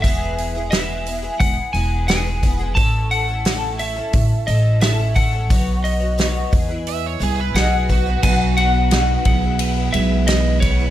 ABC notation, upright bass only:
X:1
M:4/4
L:1/16
Q:1/4=88
K:E
V:1 name="Upright bass" clef=bass
E,,,8 E,,, z E,,,6 | A,,,8 A,,, z A,,,6 | B,,,6 E,,4 =C,,2 B,,,4 | B,,,6 B,,,4 B,,,6 |]